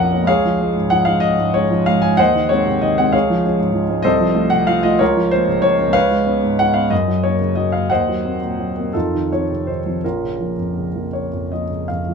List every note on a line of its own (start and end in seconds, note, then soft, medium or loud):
0.00 0.24 A#1 medium
0.00 0.30 F2 soft
0.00 0.30 F3 soft
0.00 0.12 A#3 soft
0.00 0.12 C#4 soft
0.00 0.30 A#4 medium
0.00 0.30 D#5 medium
0.00 0.27 F5 medium
0.00 0.27 F#5 loud
0.12 0.26 A#3 soft
0.12 0.26 C#4 soft
0.24 2.12 C#2 medium
0.24 0.90 F5 medium
0.28 0.86 G#4 medium
0.28 0.86 C#5 medium
0.45 0.69 F3 soft
0.61 0.74 G#3 soft
0.61 0.74 C#4 medium
0.75 1.00 G#2 soft
0.90 1.15 F3 soft
0.90 1.06 F#5 medium
1.05 1.34 G#3 soft
1.05 1.34 C#4 soft
1.05 1.21 F5 medium
1.20 1.53 D#5 loud
1.39 1.64 G#2 soft
1.54 1.69 G#3 soft
1.54 1.69 C#4 soft
1.54 1.86 C#5 medium
1.70 1.96 F3 soft
1.86 2.12 G#2 medium
1.86 2.02 F5 medium
2.02 2.17 G#3 soft
2.02 2.17 C#4 medium
2.02 2.18 G#5 medium
2.17 3.11 D#2 medium
2.17 2.49 C5 medium
2.17 2.49 D#5 medium
2.17 2.50 F#5 loud
2.35 2.60 D#3 medium
2.49 2.65 G#3 soft
2.49 2.65 C4 medium
2.49 2.82 C#5 medium
2.66 2.92 C3 soft
2.82 3.08 D#3 medium
2.82 2.98 D#5 medium
2.98 3.13 G#3 soft
2.98 3.13 C4 medium
2.98 3.14 F#5 medium
3.12 4.02 C#2 medium
3.12 3.42 G#4 medium
3.12 3.42 C#5 medium
3.12 3.44 F5 medium
3.30 3.54 F3 medium
3.45 3.59 G#3 soft
3.45 3.59 C#4 medium
3.59 3.84 G#2 medium
3.73 3.98 F3 soft
3.89 4.03 G#3 soft
3.89 4.04 C#4 soft
4.03 4.98 C2 medium
4.03 4.48 A4 medium
4.03 4.48 C5 medium
4.03 4.51 D#5 loud
4.20 4.46 F3 medium
4.34 4.50 A3 soft
4.34 4.50 F4 medium
4.50 4.77 C3 soft
4.50 4.67 F#5 medium
4.67 4.94 F3 medium
4.67 4.84 F5 loud
4.83 4.99 A3 soft
4.83 4.99 F4 medium
4.83 5.00 D#5 medium
4.99 5.86 C#2 medium
4.99 5.30 F4 medium
4.99 5.30 A#4 medium
4.99 5.32 C#5 medium
5.17 5.42 F3 soft
5.31 5.47 A#3 soft
5.31 5.47 C#4 medium
5.31 5.63 C5 medium
5.48 5.73 C#3 medium
5.62 5.88 F3 soft
5.62 5.93 C#5 medium
5.79 5.93 A#3 soft
5.79 5.93 C#4 soft
5.87 6.84 C#2 medium
5.93 6.54 B4 medium
5.93 6.54 C#5 medium
5.93 6.58 F5 loud
6.11 6.36 G#3 soft
6.27 6.41 B3 soft
6.27 6.41 C#4 medium
6.44 6.69 G#2 soft
6.59 6.85 G#3 soft
6.59 6.75 F#5 loud
6.74 6.89 B3 soft
6.74 6.90 C#4 soft
6.74 6.91 F5 medium
6.90 7.86 F#2 medium
6.90 7.23 D#5 medium
7.08 7.33 F#3 soft
7.24 7.39 A#3 soft
7.24 7.39 C#4 soft
7.24 7.56 C#5 medium
7.41 7.66 C#3 soft
7.55 7.82 F#3 soft
7.55 7.72 D#5 medium
7.72 7.88 A#3 soft
7.72 7.88 C#4 soft
7.72 7.89 F5 medium
7.90 8.92 D#2 medium
7.90 8.91 C5 medium
7.90 8.91 D#5 medium
7.90 8.94 F#5 medium
8.08 8.34 F#3 soft
8.25 8.40 A#3 soft
8.25 8.40 C4 soft
8.43 8.70 A#2 soft
8.59 8.87 F#3 soft
8.77 8.93 A#3 soft
8.77 8.93 C4 soft
8.93 10.00 F2 soft
8.93 9.28 D#4 soft
8.93 9.29 F4 soft
8.93 9.30 A4 medium
9.14 9.42 D#3 soft
9.32 9.48 F3 soft
9.32 9.49 C4 soft
9.32 9.68 C#5 medium
9.50 9.79 C3 soft
9.67 9.96 D#3 soft
9.67 10.03 C5 medium
9.86 10.02 F3 soft
9.86 10.02 C4 soft
10.04 12.14 A#1 soft
10.04 11.86 C#4 soft
10.04 11.86 F4 soft
10.04 11.89 A#4 medium
10.24 10.51 C#3 soft
10.40 10.56 F3 soft
10.40 10.56 A#3 soft
10.58 10.87 F2 soft
10.77 11.06 C#3 soft
10.95 11.28 F3 soft
10.95 11.28 A#3 soft
11.13 11.51 C#5 soft
11.33 11.62 F2 soft
11.52 11.69 F3 soft
11.52 11.69 A#3 soft
11.52 11.89 D#5 medium
11.70 12.00 C#3 soft
11.88 12.14 F2 soft
11.88 12.14 F5 medium
12.08 12.14 F3 soft
12.08 12.14 A#3 soft